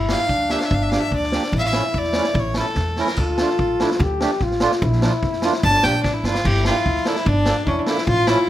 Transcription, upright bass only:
0.00 0.13 G1 medium
0.29 0.54 D2 medium
0.71 0.96 G1 medium
1.11 1.36 D2 medium
1.53 1.78 A1 loud
1.94 2.19 E2 medium
2.34 2.60 A1 loud
2.76 3.01 E2 medium
3.17 3.42 D2 loud
3.59 3.83 A1 medium
3.99 4.24 D2 loud
4.41 4.65 A1 medium
4.82 5.06 A#1 loud
5.23 5.47 F2 medium
5.63 5.76 G1 loud
5.84 6.02 A#1 medium
6.04 6.22 A1 medium
6.24 6.43 G1 medium
6.45 6.69 G1 loud
6.85 6.98 D2 medium
7.26 7.51 G1 loud
7.67 7.79 E2 loud
8.07 8.32 A1 loud

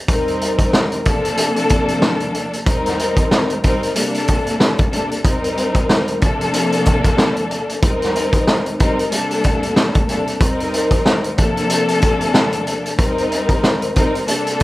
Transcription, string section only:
0.08 0.99 G3 medium
0.08 0.99 C4 medium
0.08 0.99 D#4 medium
0.08 1.00 A#4 loud
1.04 2.56 C3 loud
1.04 2.56 F3 loud
1.04 2.56 A#3 loud
1.04 2.56 D4 medium
1.04 2.57 A4 loud
2.65 3.56 G3 medium
2.65 3.57 C4 medium
2.65 3.57 D#4 medium
2.65 3.57 A#4 loud
3.62 3.93 G3 loud
3.62 3.96 C4 medium
3.62 3.96 D#4 medium
3.62 3.96 A#4 loud
3.93 4.85 C3 medium
3.93 4.85 G3 medium
3.93 4.86 A#3 medium
3.93 4.86 D4 medium
3.93 4.86 A4 loud
4.91 5.22 C3 medium
4.91 5.22 G3 medium
4.91 5.22 A#3 medium
4.91 5.23 D4 medium
4.91 5.23 A4 medium
5.24 6.15 G3 medium
5.24 6.15 C4 medium
5.24 6.16 D#4 medium
5.24 6.16 A#4 loud
6.21 7.72 C3 loud
6.21 7.72 F3 medium
6.21 7.72 A#3 loud
6.21 7.73 D4 medium
6.21 7.73 A4 loud
7.81 8.72 G3 medium
7.81 8.73 C4 medium
7.81 8.73 D#4 medium
7.81 8.74 A#4 loud
8.79 9.09 G3 loud
8.79 9.12 C4 medium
8.79 9.12 D#4 medium
8.79 9.13 A#4 loud
9.09 10.01 C3 medium
9.09 10.01 G3 medium
9.09 10.02 A#3 medium
9.09 10.02 D4 medium
9.09 10.02 A4 loud
10.07 10.38 C3 medium
10.07 10.38 G3 medium
10.07 10.39 A#3 medium
10.07 10.39 D4 medium
10.07 10.39 A4 medium
10.40 11.31 G3 medium
10.40 11.31 C4 medium
10.40 11.32 D#4 medium
10.40 11.32 A#4 loud
11.37 12.88 C3 loud
11.37 12.88 F3 loud
11.37 12.88 A#3 loud
11.37 12.89 D4 medium
11.37 12.89 A4 loud
12.97 13.88 G3 medium
12.97 13.89 C4 medium
12.97 13.89 D#4 medium
12.97 13.90 A#4 loud
13.95 14.25 G3 loud
13.95 14.28 C4 medium
13.95 14.28 D#4 medium
13.95 14.29 A#4 loud
14.25 14.63 C3 medium
14.25 14.63 G3 medium
14.25 14.63 A#3 medium
14.25 14.63 D4 medium
14.25 14.63 A4 loud

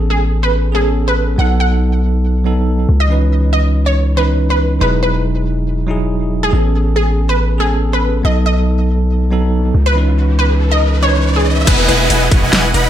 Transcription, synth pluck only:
0.10 0.36 G#4 medium
0.43 0.68 B4 medium
0.75 1.00 G#4 medium
1.08 1.33 B4 medium
1.39 1.56 F#5 medium
1.60 1.77 F#5 medium
3.00 3.25 D#5 medium
3.53 3.79 D#5 medium
3.86 4.11 C#5 medium
4.17 4.43 B4 loud
4.50 4.75 B4 medium
4.81 4.99 B4 medium
5.03 5.20 B4 medium
6.43 6.68 G#4 medium
6.96 7.22 G#4 medium
7.29 7.54 B4 medium
7.60 7.86 G#4 medium
7.93 8.18 B4 medium
8.25 8.42 D#5 medium
8.46 8.63 D#5 medium
9.86 10.11 B4 loud
10.39 10.64 B4 medium
10.71 10.97 D#5 medium
11.03 11.28 C#5 medium
11.36 11.61 G#4 medium
11.67 11.84 B4 loud
11.88 12.06 B4 medium

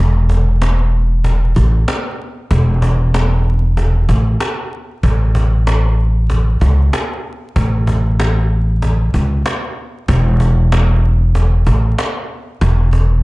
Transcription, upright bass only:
0.00 1.52 E1 loud
1.56 1.83 A1 medium
2.51 4.05 E1 loud
4.09 4.35 A1 medium
5.03 6.57 A1 loud
6.62 6.88 C#2 medium
7.56 9.10 A1 loud
9.14 9.41 C#2 medium
10.09 11.62 E1 loud
11.67 11.93 A1 medium
12.62 13.23 E1 loud

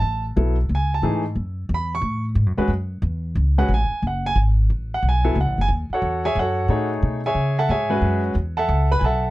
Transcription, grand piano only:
0.00 0.24 A5 medium
0.36 0.55 F#3 medium
0.36 0.55 B3 soft
0.36 0.55 E4 soft
0.36 0.56 A4 medium
0.75 0.93 G#5 medium
0.94 1.24 A5 medium
1.03 1.22 E3 medium
1.03 1.22 A3 medium
1.03 1.22 D#4 medium
1.03 1.22 G#4 medium
1.74 1.92 B5 medium
1.95 2.24 C#6 medium
2.58 2.69 G#3 medium
2.58 2.69 C#4 medium
2.58 2.69 F#4 medium
2.58 2.69 B4 medium
3.58 3.69 G#3 medium
3.58 3.69 C#4 medium
3.58 3.69 F#4 medium
3.58 3.69 B4 medium
3.58 3.70 F#5 medium
3.74 4.03 G#5 medium
4.07 4.25 F#5 medium
4.26 4.37 G#5 loud
4.94 5.04 F#5 medium
5.09 5.37 G#5 medium
5.24 5.35 F#3 medium
5.24 5.35 B3 medium
5.24 5.35 E4 medium
5.24 5.35 A4 medium
5.41 5.59 F#5 medium
5.61 5.67 G#5 medium
5.93 6.23 F#4 medium
5.93 6.23 A4 medium
5.93 6.23 C#5 medium
5.93 6.23 F#5 medium
6.25 6.36 G#4 medium
6.25 6.37 C#5 medium
6.25 6.37 E5 medium
6.25 6.36 G#5 medium
6.39 6.89 F#4 medium
6.39 6.89 A4 medium
6.39 6.69 C#5 medium
6.39 6.88 F#5 medium
6.69 7.19 A3 medium
6.69 7.20 D#4 medium
6.69 7.20 G#4 medium
6.69 7.20 C#5 medium
7.26 7.56 G#4 medium
7.26 7.56 C#5 medium
7.26 7.56 E5 medium
7.26 7.56 G#5 medium
7.58 7.70 A4 medium
7.58 7.70 E5 medium
7.58 7.70 F#5 medium
7.58 7.70 A5 medium
7.70 8.21 G#4 medium
7.70 8.21 C#5 medium
7.70 8.21 E5 medium
7.70 8.20 G#5 medium
7.90 8.33 G#3 medium
7.90 8.33 C#4 medium
7.90 8.33 F#4 medium
7.90 8.33 B4 medium
8.57 8.88 A4 medium
8.57 8.89 E5 medium
8.57 8.88 F#5 medium
8.57 8.88 A5 medium
8.92 9.03 B4 medium
8.92 9.03 B5 medium
8.99 9.02 G#5 medium
9.04 9.30 A4 medium
9.04 9.30 E5 medium
9.04 9.30 F#5 medium
9.04 9.30 A5 medium

